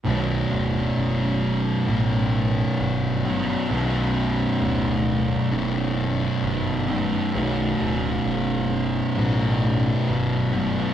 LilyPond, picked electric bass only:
\new Staff \with { instrumentName = "Picked electric bass" } { \clef bass \time 4/4 \key b \minor \tempo 4 = 66 b,,,8 d,,8 fis,,4 a,,4 g,,4 | b,,,4 d,,4 fis,,4 g,,4 | b,,,8 d,,8 fis,,4 a,,4 g,,4 | }